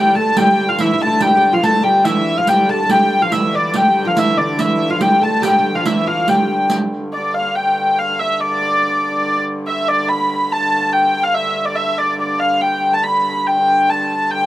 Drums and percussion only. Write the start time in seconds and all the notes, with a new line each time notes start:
0.37 riq
0.78 riq
1.00 riq
1.21 riq
1.64 riq
2.05 riq
2.47 riq
2.89 riq
3.32 riq
3.74 riq
4.17 riq
4.59 riq
5.01 riq
5.43 riq
5.86 riq
6.28 riq
6.70 riq